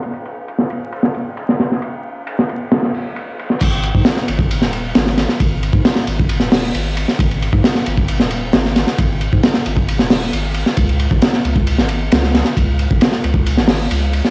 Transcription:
<<
  \new Staff \with { instrumentName = "Sub bass" } { \clef bass \time 4/4 \key cis \dorian \tempo 4 = 134 r1 | r1 | gis,,8. gis,16 r8 gis,,8. dis,,8. gis,,8. r16 | gis,,8. gis,16 r8 gis,,8. dis,,8. gis,,8. r16 |
gis,,8. gis,16 r8 gis,,8. dis,,8. gis,,8. r16 | gis,,8. gis,16 r8 gis,,8. dis,,8. gis,,8. r16 | cis,8. gis,,16 r8 cis,8. gis,,8. cis,8. r16 | cis,8. gis,,16 r8 cis,8. gis,,8. cis,8. r16 | }
  \new DrumStaff \with { instrumentName = "Drums" } \drummode { \time 4/4 cymr16 cymr16 cymr8 cymr16 sn16 cymr8 cymr16 sn16 cymr8 cymr16 sn16 <cymr sn>16 sn16 | cymr4 cymr16 sn16 cymr8 <cymr sn>16 sn16 hho8 cymr8 cymr16 sn16 | <cymc bd cymr>16 cymr16 cymr16 bd16 <cymr sn>16 sn16 cymr16 bd16 cymr16 sn16 cymr8 <cymr sn>16 sn16 <cymr sn>16 sn16 | <bd cymr>8 cymr16 bd16 <cymr sn>16 sn16 cymr16 bd16 cymr16 sn16 <hho sn>8 cymr8 cymr16 sn16 |
<bd cymr>16 cymr16 cymr16 bd16 <cymr sn>16 sn16 cymr16 bd16 cymr16 sn16 cymr8 <cymr sn>16 sn16 <cymr sn>16 sn16 | <bd cymr>8 cymr16 bd16 <cymr sn>16 sn16 cymr16 bd16 cymr16 sn16 <hho sn>8 cymr8 cymr16 sn16 | <bd cymr>16 cymr16 cymr16 bd16 <cymr sn>16 sn16 cymr16 bd16 cymr16 sn16 cymr8 <cymr sn>16 sn16 <cymr sn>16 sn16 | <bd cymr>8 cymr16 bd16 <cymr sn>16 sn16 cymr16 bd16 cymr16 sn16 <hho sn>8 cymr8 cymr16 sn16 | }
>>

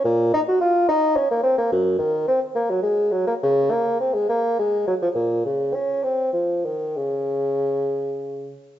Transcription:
\new Staff \with { instrumentName = "Bassoon" } { \time 6/8 \key bes \minor \tempo 4. = 69 bes,8 ees'16 ges'16 f'8 ees'8 des'16 bes16 c'16 bes16 | \key des \major ges,8 ees8 c'8 bes16 ges16 aes8 ges16 bes16 | des8 bes8 c'16 aes16 bes8 aes8 ges16 f16 | bes,8 des8 des'8 c'8 f8 ees8 |
des2~ des8 r8 | }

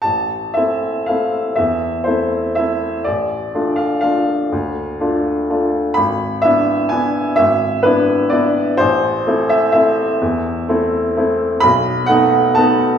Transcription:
\new Staff \with { instrumentName = "Upright piano" } { \time 3/4 \key a \minor \tempo 4 = 125 << { a''4 e''4 f''4 | e''4 c''4 e''4 | d''4. f''8 f''4~ | f''2~ f''8 r8 |
b''4 e''4 gis''4 | e''4 b'4 d''4 | c''4. e''8 e''4~ | e''2~ e''8 r8 |
b''4 fis''4 a''4 | } \\ { a,,4 <a c' e'>4 <a c' e'>4 | e,4 <a c' e'>4 <a c' e'>4 | a,,4 <a d' f'>4 <a d' f'>4 | d,4 <a d' f'>4 <a d' f'>4 |
gis,,4 <b d' e'>4 <b d' e'>4 | gis,,4 <b d' e'>4 <b d' e'>4 | a,,4 <a c' e'>4 <a c' e'>4 | e,4 <a c' e'>4 <a c' e'>4 |
b,,4 <a b dis'>4 <a b dis'>4 | } >> }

